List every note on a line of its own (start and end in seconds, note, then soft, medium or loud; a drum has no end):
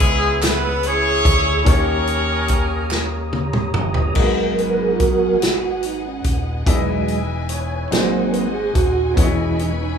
0.00 1.21 C#2 medium
0.00 0.38 C#3 medium
0.00 0.40 G#3 medium
0.00 0.46 B3 medium
0.00 1.62 B3 medium
0.00 1.63 C#4 medium
0.00 0.82 E4 medium
0.00 1.63 E4 medium
0.00 0.40 G#4 loud
0.00 1.62 G#4 medium
0.00 1.64 G#4 medium
0.00 1.65 C#5 medium
0.00 1.65 B5 medium
0.00 1.63 E6 medium
0.00 kick medium
0.00 closed hi-hat medium
0.42 0.86 B3 medium
0.42 0.86 B4 loud
0.42 snare medium
0.42 clap medium
0.42 closed hi-hat medium
0.83 1.64 G#4 medium
0.83 closed hi-hat soft
0.87 1.68 C#4 loud
0.87 1.65 E4 medium
0.87 1.68 C#5 loud
1.25 1.63 D2 medium
1.25 kick medium
1.25 closed hi-hat medium
1.65 3.76 D#2 medium
1.65 2.88 D#3 medium
1.65 4.12 A#3 medium
1.65 4.12 C#4 medium
1.65 3.30 C#4 medium
1.65 4.13 D#4 medium
1.65 4.14 G4 medium
1.65 4.13 G4 medium
1.65 3.30 G4 medium
1.65 3.30 A#4 medium
1.65 4.14 C#5 medium
1.65 3.30 C#5 medium
1.65 4.14 A#5 medium
1.65 4.14 D#6 medium
1.65 kick loud
1.65 closed hi-hat medium
1.70 4.14 C#5 medium
2.07 closed hi-hat soft
2.48 kick medium
2.48 closed hi-hat medium
2.91 snare medium
2.91 clap medium
3.33 high tom medium
3.53 mid tom medium
3.74 4.13 G1 medium
3.74 mid tom loud
3.94 floor tom medium
4.14 6.21 G#1 medium
4.14 5.38 G#2 medium
4.14 5.37 F#3 soft
4.14 4.22 A#3 soft
4.14 5.38 B3 soft
4.14 7.89 B3 medium
4.14 6.63 D#4 medium
4.14 6.63 F#4 soft
4.14 6.65 G#4 medium
4.14 6.64 G#4 soft
4.14 5.38 A#4 soft
4.14 7.89 D#5 medium
4.14 6.65 F#5 medium
4.14 kick medium
4.14 crash medium
4.19 6.64 B3 medium
4.19 6.64 D#5 medium
4.58 4.80 B4 medium
4.58 closed hi-hat soft
4.79 4.93 G#4 medium
4.93 5.00 F4 medium
5.00 5.86 F#4 medium
5.00 kick medium
5.00 closed hi-hat medium
5.42 snare medium
5.42 closed hi-hat medium
5.83 6.06 D#4 medium
5.83 closed hi-hat soft
6.07 6.45 C#4 medium
6.24 6.63 D#1 medium
6.24 kick medium
6.24 closed hi-hat medium
6.66 7.88 E1 medium
6.66 7.88 E3 medium
6.66 7.22 F#3 soft
6.66 7.23 G#3 soft
6.66 7.92 B3 medium
6.66 7.89 D#4 medium
6.66 7.92 E4 medium
6.66 7.91 G#4 medium
6.66 7.91 B4 medium
6.66 6.74 D5 medium
6.66 7.23 D#5 soft
6.66 7.91 G#5 medium
6.66 kick loud
6.66 closed hi-hat medium
6.75 7.96 D#5 medium
7.08 closed hi-hat soft
7.49 7.93 C#5 medium
7.49 closed hi-hat medium
7.91 8.71 G#1 medium
7.91 9.14 G#2 medium
7.91 8.47 F#3 medium
7.91 8.48 A#3 soft
7.91 9.17 C4 medium
7.91 8.48 C4 medium
7.91 9.15 D#4 soft
7.91 9.17 F#4 medium
7.91 9.17 G#4 medium
7.91 9.16 C5 medium
7.91 8.35 C5 medium
7.91 7.99 D5 soft
7.91 9.16 D#5 medium
7.91 9.16 F#5 medium
7.91 9.98 G#5 medium
7.91 snare medium
7.91 closed hi-hat medium
8.00 9.21 D#5 medium
8.33 8.42 B4 medium
8.33 closed hi-hat soft
8.53 8.73 G#4 medium
8.75 9.14 D#1 medium
8.75 9.14 F#4 medium
8.75 kick medium
8.75 closed hi-hat medium
9.14 9.98 E1 medium
9.14 9.72 E3 soft
9.14 9.98 E3 medium
9.14 9.98 B3 medium
9.14 9.73 B3 soft
9.14 9.98 C#4 soft
9.14 9.24 D#4 soft
9.14 9.61 E4 medium
9.14 9.98 G#4 soft
9.14 9.98 B4 medium
9.14 9.98 C#5 medium
9.14 9.73 D#5 medium
9.14 9.98 B5 medium
9.14 kick loud
9.14 closed hi-hat medium
9.19 9.98 C#5 medium
9.23 9.98 E4 soft
9.59 9.70 D#4 medium
9.59 closed hi-hat soft
9.82 9.98 D#4 medium